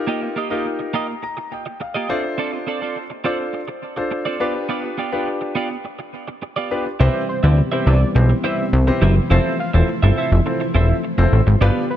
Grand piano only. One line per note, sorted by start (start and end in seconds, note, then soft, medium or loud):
0.00 0.36 D#4 medium
0.00 0.37 F4 medium
0.00 0.37 G4 medium
0.00 0.37 A#4 loud
0.51 1.07 D#4 medium
0.51 1.07 F4 medium
0.51 1.07 G4 medium
0.51 1.07 A#4 medium
0.94 1.21 A#5 medium
1.23 1.50 A#5 medium
1.52 1.79 G5 medium
1.81 2.08 F5 medium
2.09 3.02 D4 medium
2.09 3.02 F4 medium
2.09 3.02 A4 medium
2.09 3.02 C5 loud
2.09 2.36 E5 medium
3.25 3.60 D4 medium
3.25 3.60 F4 medium
3.25 3.60 A4 medium
3.25 3.60 C5 medium
3.97 4.32 D4 medium
3.97 4.32 F4 medium
3.97 4.32 A4 medium
3.97 4.32 C5 medium
4.40 4.98 D4 medium
4.40 4.98 F4 medium
4.40 4.98 G4 medium
4.40 4.98 B4 loud
5.12 5.68 D4 medium
5.12 5.68 F4 medium
5.12 5.68 G4 medium
5.12 5.68 B4 medium
6.71 6.85 D4 medium
6.71 6.85 F4 medium
6.71 6.85 G4 medium
6.71 6.85 B4 medium
7.00 7.21 C4 medium
7.00 7.21 E4 medium
7.00 7.21 G4 medium
7.00 7.21 B4 medium
7.00 7.21 C5 loud
7.43 7.57 C4 medium
7.43 7.57 E4 medium
7.43 7.57 G4 medium
7.43 7.57 B4 medium
7.43 7.57 D5 medium
7.72 7.93 C4 medium
7.72 7.93 E4 medium
7.72 7.93 G4 medium
7.72 7.93 B4 medium
7.72 7.93 C5 medium
8.15 8.29 C4 medium
8.15 8.29 E4 medium
8.15 8.29 G4 medium
8.15 8.29 B4 medium
8.15 8.30 C5 medium
8.44 8.65 C4 medium
8.44 8.65 E4 medium
8.44 8.65 G4 medium
8.44 8.65 B4 medium
8.44 8.65 C5 medium
8.87 9.08 C4 medium
8.87 9.08 E4 medium
8.87 9.08 G4 medium
8.87 9.08 B4 medium
8.87 9.09 C5 loud
9.30 9.51 C4 loud
9.30 9.51 E4 medium
9.30 9.52 F4 medium
9.30 9.52 A4 medium
9.30 9.52 C5 loud
9.74 9.88 C4 medium
9.74 9.88 E4 medium
9.74 9.88 F4 medium
9.74 9.88 A4 medium
9.74 9.88 C5 medium
10.02 10.24 C4 medium
10.02 10.24 E4 medium
10.02 10.24 F4 medium
10.02 10.24 A4 medium
10.02 10.24 C5 medium
10.46 10.60 C4 medium
10.46 10.60 E4 medium
10.46 10.60 F4 medium
10.46 10.60 A4 medium
10.46 10.60 C5 medium
10.75 10.96 C4 medium
10.75 10.96 E4 medium
10.75 10.96 F4 medium
10.75 10.96 A4 medium
10.75 10.96 C5 medium
11.18 11.39 C4 medium
11.18 11.39 E4 medium
11.18 11.39 F4 medium
11.18 11.39 A4 medium
11.18 11.39 C5 loud
11.61 11.82 B3 medium
11.61 11.82 D4 medium
11.61 11.83 F4 medium
11.61 11.83 G4 medium
11.61 11.83 B4 loud